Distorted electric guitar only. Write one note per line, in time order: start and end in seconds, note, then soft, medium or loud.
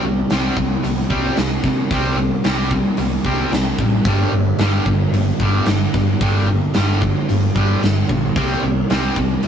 0.04 0.28 C3 medium
0.04 0.28 G3 medium
0.31 0.56 C3 medium
0.31 0.56 G3 medium
0.31 0.57 C4 medium
0.58 0.82 C3 medium
0.58 0.82 G3 medium
0.84 1.08 C3 medium
0.84 1.08 G3 medium
1.10 1.36 C3 medium
1.10 1.36 G3 medium
1.10 1.36 C4 medium
1.38 1.62 C3 medium
1.38 1.62 G3 medium
1.65 1.89 C3 medium
1.65 1.90 G3 medium
1.91 2.16 C3 medium
1.91 2.16 G3 medium
1.91 2.17 C4 medium
2.17 2.42 C3 medium
2.17 2.42 G3 medium
2.44 2.70 C3 medium
2.44 2.70 G3 medium
2.44 2.71 C4 medium
2.71 2.96 C3 medium
2.71 2.96 G3 medium
2.98 3.23 C3 medium
2.98 3.23 G3 medium
3.25 3.50 C3 medium
3.25 3.51 G3 medium
3.25 3.51 C4 medium
3.51 3.76 C3 medium
3.51 3.77 G3 medium
3.80 4.04 C3 medium
3.80 4.04 G3 medium
4.06 4.31 G2 medium
4.06 4.32 D3 medium
4.06 4.32 G3 medium
4.33 4.57 G2 medium
4.33 4.57 D3 medium
4.59 4.85 G2 medium
4.59 4.85 D3 medium
4.59 4.86 G3 medium
4.87 5.11 G2 medium
4.87 5.11 D3 medium
5.14 5.38 G2 medium
5.14 5.38 D3 medium
5.40 5.66 G2 medium
5.40 5.66 D3 medium
5.40 5.67 G3 medium
5.68 5.92 G2 medium
5.68 5.92 D3 medium
5.94 6.18 G2 medium
5.94 6.19 D3 medium
6.21 6.46 G2 medium
6.21 6.47 D3 medium
6.21 6.47 G3 medium
6.48 6.72 G2 medium
6.48 6.72 D3 medium
6.74 7.00 G2 medium
6.74 7.00 D3 medium
6.74 7.01 G3 loud
7.02 7.26 G2 medium
7.02 7.27 D3 medium
7.29 7.53 G2 medium
7.29 7.53 D3 medium
7.55 7.81 G2 medium
7.55 7.81 D3 medium
7.55 7.82 G3 medium
7.83 8.07 G2 medium
7.83 8.07 D3 medium
8.09 8.33 G2 medium
8.09 8.34 D3 medium
8.36 8.62 C3 medium
8.36 8.62 G3 medium
8.36 8.62 C4 medium
8.64 8.88 C3 medium
8.64 8.88 G3 medium
8.90 9.15 C3 medium
8.90 9.16 G3 medium
8.90 9.16 C4 medium
9.18 9.42 C3 medium
9.18 9.42 G3 medium
9.43 9.48 C3 medium
9.43 9.48 G3 medium